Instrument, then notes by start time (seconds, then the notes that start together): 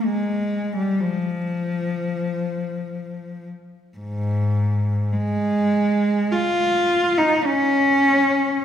cello
0.05 G#3
0.77 G3
1.01 F3
3.98 G#2
5.13 G#3
6.32 F4
7.18 D#4
7.45 C#4